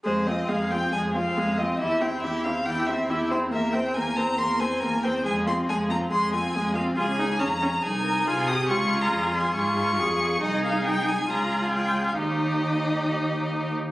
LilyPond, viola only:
\new Staff \with { instrumentName = "Viola" } { \time 4/4 \key f \minor \tempo 4 = 138 aes8 c'8 aes8 c'8 aes8 c'8 aes8 c'8 | e'8 c'8 e'8 c'8 e'8 c'8 e'8 c'8 | bes8 c'8 bes8 c'8 bes8 c'8 bes8 c'8 | aes8 c'8 aes8 c'8 aes8 c'8 aes8 c'8 |
\key des \lydian f'8 ees'8 des'8 des'8 ees'4 f'8 g'8 | f'2 f'4 aes'4 | ees'2 f'2 | ees'2.~ ees'8 r8 | }